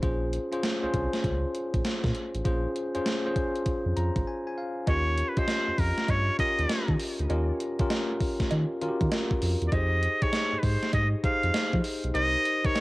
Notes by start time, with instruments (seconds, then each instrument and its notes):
0.02 analog synth bass A#1, tine electric piano C#4 F4 G#4 C5, kick, closed hi-hat
0.33 closed hi-hat
0.52 tine electric piano C#4 F4 G#4 C5, closed hi-hat
0.63 snare, closed hi-hat
0.83 analog synth bass C2, tine electric piano C#4 F4 G#4 C5
0.94 analog synth bass C2, kick, closed hi-hat
1.13 snare, closed hi-hat
1.24 analog synth bass C#2, kick, closed hi-hat
1.55 closed hi-hat
1.74 analog synth bass A#1, kick, closed hi-hat
1.85 snare, closed hi-hat
2.04 analog synth bass A#2, kick, snare
2.15 closed hi-hat
2.35 analog synth bass A1, closed hi-hat
2.45 analog synth bass A#1, tine electric piano C#4 F4 G#4 C5, kick, closed hi-hat
2.76 closed hi-hat
2.95 analog synth bass F2, tine electric piano C#4 F4 G#4 C5, closed hi-hat
3.06 snare, closed hi-hat
3.25 tine electric piano C#4 F4 G#4 C5
3.36 kick, closed hi-hat
3.56 closed hi-hat
3.66 kick, closed hi-hat
3.86 analog synth bass F2
3.97 analog synth bass F2, tine electric piano A#5, closed hi-hat
4.16 analog synth bass G#1, kick, closed hi-hat
4.27 tine electric piano G#5
4.47 tine electric piano G#5
4.58 tine electric piano F5
4.87 analog synth bass D#2, tine electric piano C#4 F4 G4 A#4, muted trumpet C#5, kick, closed hi-hat, cowbell
5.18 closed hi-hat
5.29 muted trumpet B4
5.37 tine electric piano C#4 F4 G4 D#5, muted trumpet C5, kick, closed hi-hat
5.48 snare, closed hi-hat, cowbell
5.68 analog synth bass F2
5.78 analog synth bass F2, muted trumpet A#4, kick, open hi-hat
5.98 snare, closed hi-hat
6.08 analog synth bass G2, muted trumpet C#5, kick, closed hi-hat, cowbell
6.39 tine electric piano C#4 F4 G4 A#4, muted trumpet D#5, kick, closed hi-hat
6.59 analog synth bass D#2, closed hi-hat
6.69 snare, closed hi-hat, cowbell
6.88 analog synth bass D#3, kick
7.00 open hi-hat
7.19 analog synth bass D2, closed hi-hat
7.29 analog synth bass D#2, tine electric piano C#4 F4 G4 A#4, closed hi-hat, cowbell
7.60 closed hi-hat
7.79 analog synth bass D#3, tine electric piano C#4 F4 G4 A#4, kick, closed hi-hat
7.90 snare, closed hi-hat, cowbell
8.21 kick, open hi-hat
8.40 kick, snare, closed hi-hat
8.51 analog synth bass D#3, closed hi-hat, cowbell
8.81 analog synth bass D#3, tine electric piano C#4 F4 F#4 A#4, closed hi-hat
8.88 tine electric piano G4
9.01 analog synth bass D#3, kick, closed hi-hat
9.12 snare, closed hi-hat, cowbell
9.31 kick
9.42 analog synth bass F2, open hi-hat
9.62 analog synth bass E2, closed hi-hat
9.68 muted trumpet D5
9.72 analog synth bass F2, tine electric piano D#4 G4 G#4 C5, muted trumpet D#5, kick, closed hi-hat, cowbell
10.03 closed hi-hat
10.22 tine electric piano D#4 G4 G#4 D#5, muted trumpet C#5, kick, closed hi-hat
10.33 snare, closed hi-hat, cowbell
10.53 analog synth bass G#2
10.59 muted trumpet B4, kick, open hi-hat
10.63 analog synth bass G#2, muted trumpet C5
10.83 snare, closed hi-hat
10.93 analog synth bass G#2, muted trumpet D#5, kick, closed hi-hat, cowbell
11.23 tine electric piano D#4 G4 G#4 C5, muted trumpet F5, kick, closed hi-hat
11.43 analog synth bass F2, closed hi-hat
11.54 snare, closed hi-hat, cowbell
11.73 analog synth bass F3, kick
11.84 open hi-hat
12.04 analog synth bass B1, closed hi-hat
12.14 analog synth bass C2, tine electric piano D#4 G4 A#4 C5, muted trumpet D#5, closed hi-hat, cowbell
12.45 closed hi-hat
12.64 analog synth bass C3, tine electric piano D#4 G4 A#4 D#5, muted trumpet C#5, kick, closed hi-hat
12.75 snare, closed hi-hat, cowbell